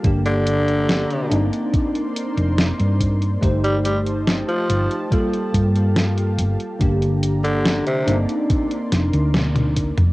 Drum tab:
HH |xxxxxxxxxxxxxxxx|xxxxxxxxxxxxxxxx|xxxxxxxxxxxxxxxx|
SD |----o-------o---|----o-------o---|----o-----o-o---|
T1 |----------------|----------------|------------oo--|
T2 |----------------|----------------|---------------o|
BD |o-------o-----o-|o-------o-o-----|o-------o-----o-|